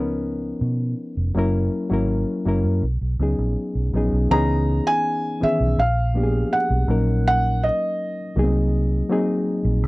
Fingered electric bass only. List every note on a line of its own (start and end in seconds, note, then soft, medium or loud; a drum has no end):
0.00 0.52 C#2 medium
0.61 0.94 B2 medium
1.17 1.33 F1 medium
1.35 1.68 F#1 medium
1.91 2.23 G#1 medium
2.46 2.62 F#1 medium
2.64 2.81 F#2 medium
2.82 2.99 B1 medium
3.01 3.18 B1 medium
3.19 3.36 C#2 medium
3.38 3.55 A#1 medium
3.75 3.91 B1 medium
3.93 4.10 A#1 medium
4.12 4.28 B1 medium
4.31 4.79 C#2 medium
5.43 muted fingered electric bass stroke soft
5.60 5.76 B1 medium
5.78 6.43 A#1 medium
6.70 6.87 B1 medium
6.88 7.69 A#1 loud
8.36 9.01 C2 medium
9.65 9.83 A#1 medium
9.83 9.88 C2 loud